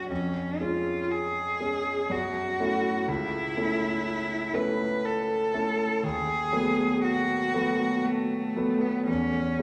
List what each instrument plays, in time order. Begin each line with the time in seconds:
Already playing: grand piano F#3 C#4
0.09 grand piano F2, cello C#4
0.60 grand piano G#3 C#4, cello F4
1.11 cello G#4
1.60 grand piano G#3 C#4
2.10 grand piano F#2, cello F#4
2.60 grand piano A3 C#4 E4
3.08 grand piano C#2, cello E4
3.57 grand piano A3 C#4 E4
4.54 grand piano A3 C#4 E4, cello B4
5.05 cello A4
5.54 grand piano A3 C#4 E4
6.03 grand piano D#2, cello G#4
6.52 grand piano F#3 A3 B3
7.03 cello F#4
7.54 grand piano F#3 A3 B3
8.04 cello A3
8.56 grand piano F#3 A3 B3
8.81 cello B3
9.07 grand piano E2, cello C#4
9.59 grand piano E3